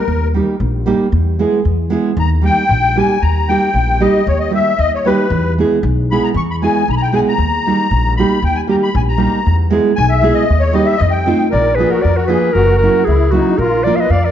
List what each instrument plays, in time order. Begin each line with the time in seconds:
Already playing: accordion A#4
0.08 upright bass D#2
0.34 nylon-string guitar G3 A#3 D#4 G4
0.60 upright bass A#1
0.86 nylon-string guitar G3 A#3 D#4 G4
1.12 upright bass E2
1.39 nylon-string guitar G#3 B3 E4 G#4
1.65 upright bass E2
1.90 nylon-string guitar G#3 B3 E4 G#4
2.17 upright bass D#2, accordion A#5
2.42 nylon-string guitar G3 A#3 D#4 G4, accordion G5
2.69 upright bass A#1
2.96 nylon-string guitar G3 A#3 D#4 G4, accordion G#5
3.22 upright bass D#2, accordion A#5
3.49 nylon-string guitar G3 A#3 D#4 G4, accordion G5
3.74 upright bass A#1
4.00 nylon-string guitar G3 A#3 D#4 G4, accordion D#5
4.27 upright bass D#2, accordion C#5
4.40 accordion D#5
4.50 nylon-string guitar G3 A#3 D#4 G4
4.55 accordion E5
4.79 upright bass D#2, accordion D#5
4.95 accordion C#5
5.05 nylon-string guitar G3 A#3 D#4 G4, accordion B4
5.30 upright bass E2
5.58 nylon-string guitar G#3 B3 E4 G#4
5.83 upright bass B1
6.11 nylon-string guitar G#3 B3 E4 G#4, accordion B5
6.24 accordion A#5
6.34 upright bass E2, accordion C#6
6.51 accordion B5
6.62 nylon-string guitar G#3 B3 E4 G#4, accordion G#5
6.88 upright bass B1, accordion A#5
6.92 accordion B5
6.97 accordion A#5
7.03 accordion G5
7.12 nylon-string guitar G#3 B3 E4 G#4, accordion G#5
7.28 accordion A#5
7.38 upright bass D#2
7.67 nylon-string guitar G3 A#3 D#4 G4
7.91 upright bass A#1
8.17 nylon-string guitar G3 A#3 D#4 G4, accordion B5
8.42 upright bass D#2, accordion G5
8.55 accordion G#5
8.67 nylon-string guitar G3 A#3 D#4 G4, accordion A#5
8.83 accordion B5
8.95 upright bass A#1, accordion G#5
9.09 accordion A#5
9.18 nylon-string guitar G3 A#3 D#4 G4
9.46 upright bass E2
9.70 nylon-string guitar G#3 B3 E4 G#4
9.96 upright bass B1, accordion G#5
10.09 accordion E5
10.21 nylon-string guitar G#3 B3 E4 G#4
10.34 accordion D#5
10.50 upright bass D#2
10.60 accordion C#5
10.73 nylon-string guitar G3 A#3 D#4 G4, accordion D#5
10.85 accordion E5
10.97 upright bass F2, accordion D#5
11.11 accordion G5
11.26 nylon-string guitar A3 C4 D#4 F4
11.51 upright bass A#1, accordion A#4, clarinet D5
11.75 nylon-string guitar F3, accordion G#4, clarinet B4
11.80 nylon-string guitar A#3 D4 F4
11.90 accordion F#4, clarinet A#4
12.02 upright bass F2, accordion A#4, clarinet D5
12.16 accordion F#4, clarinet A#4
12.27 nylon-string guitar F3 A#3 D4 F4, accordion G#4, clarinet B4
12.53 upright bass F#1, accordion F#4, clarinet A#4
12.78 clarinet A#4
12.82 nylon-string guitar F#3 A#3 C#4 E4, accordion F#4
13.05 upright bass C#2, accordion E4, clarinet G#4
13.31 nylon-string guitar F#3 A#3 C#4 E4, accordion D#4, clarinet F#4
13.58 upright bass A#1, accordion F4, clarinet A#4
13.84 nylon-string guitar F3 A#3 D4 F4, accordion A#4, clarinet D5
13.96 accordion B4 D5, clarinet F5
14.00 clarinet D#5
14.10 upright bass F2, accordion D5, clarinet F5
14.23 accordion A#4, clarinet D5